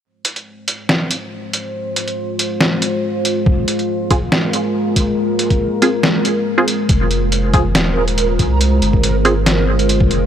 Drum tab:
HH |--xx--x---x---x-|--xx--x---x---x-|--xx--x---x---x-|--xx--x---x---x-|
SD |--------o-------|--------o-------|--------o-------|--------o-------|
BD |----------------|----------------|o-----o-------o-|---o------------|

HH |x-x-x-x-x--xx-x-|x-x-x-x-x--xx-x-|
SD |--------o-------|--------o-------|
BD |o-----o-------o-|---o---------o--|